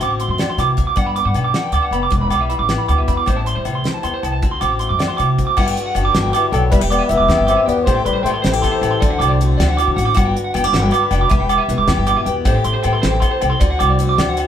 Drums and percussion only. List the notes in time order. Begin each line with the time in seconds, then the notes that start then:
0.01 closed hi-hat, low agogo
0.20 closed hi-hat
0.39 snare, closed hi-hat, low agogo
0.59 snare, closed hi-hat, low agogo
0.78 kick, closed hi-hat
0.97 kick, closed hi-hat, low agogo
1.16 closed hi-hat
1.35 closed hi-hat, low agogo
1.54 snare, closed hi-hat
1.73 closed hi-hat, low agogo
1.92 closed hi-hat, low agogo
2.12 kick, closed hi-hat
2.30 closed hi-hat, low agogo
2.51 closed hi-hat
2.69 snare, closed hi-hat, low agogo
2.88 closed hi-hat, low agogo
3.08 kick, closed hi-hat
3.26 kick, closed hi-hat, low agogo
3.47 closed hi-hat
3.65 closed hi-hat, low agogo
3.85 snare, closed hi-hat
4.03 closed hi-hat, low agogo
4.23 closed hi-hat, low agogo
4.43 kick, closed hi-hat
4.61 closed hi-hat, low agogo
4.81 closed hi-hat
5.00 snare, closed hi-hat, low agogo
5.18 closed hi-hat, low agogo
5.39 kick, closed hi-hat
5.57 kick, crash, low agogo
5.77 closed hi-hat
5.95 closed hi-hat, low agogo
6.15 snare, closed hi-hat
6.34 closed hi-hat, low agogo
6.54 closed hi-hat, low agogo
6.72 kick, closed hi-hat
6.92 closed hi-hat, low agogo
7.11 closed hi-hat
7.30 snare, closed hi-hat, low agogo
7.48 closed hi-hat, low agogo
7.69 closed hi-hat
7.87 kick, closed hi-hat, low agogo
8.06 closed hi-hat
8.26 closed hi-hat, low agogo
8.45 snare, closed hi-hat
8.64 kick, closed hi-hat, low agogo
8.83 closed hi-hat, low agogo
9.02 kick, closed hi-hat
9.21 closed hi-hat, low agogo
9.41 closed hi-hat
9.60 snare, closed hi-hat, low agogo
9.79 closed hi-hat, low agogo
9.99 closed hi-hat
10.17 kick, closed hi-hat, low agogo
10.37 closed hi-hat
10.55 closed hi-hat, low agogo
10.74 snare, closed hi-hat
10.92 closed hi-hat, low agogo
11.11 snare, closed hi-hat, low agogo
11.31 kick, closed hi-hat
11.49 closed hi-hat, low agogo
11.70 closed hi-hat
11.88 snare, closed hi-hat, low agogo
12.07 closed hi-hat, low agogo
12.26 closed hi-hat
12.45 kick, closed hi-hat, low agogo
12.64 closed hi-hat
12.84 closed hi-hat, low agogo
13.03 snare, closed hi-hat
13.22 kick, closed hi-hat, low agogo
13.42 closed hi-hat, low agogo
13.61 kick, closed hi-hat
13.80 closed hi-hat, low agogo
14.00 closed hi-hat
14.18 snare, closed hi-hat, low agogo
14.37 closed hi-hat, low agogo